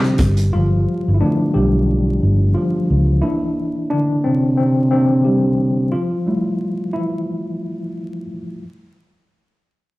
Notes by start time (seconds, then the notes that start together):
Already playing: C3 D3 G3 A3 C4 D4 G4
0.04 closed hi-hat
0.18 G1, kick, closed hi-hat
0.37 closed hi-hat
0.53 G1 F3 F4
1.08 G1
1.14 E4
1.21 D3 F3 A3 B3 D4
1.54 B1 G3 G4
2.23 G1
2.54 F3 F4
2.90 C#2
3.22 E3 A#3 D4 E4
3.90 D3 D4
4.24 C3 C4
4.57 C3 C4
4.91 C3 E3 A#3 C4 D4
5.25 G3 G4
5.92 F3 F4
6.26 G3 A3 E4
6.93 E3 E4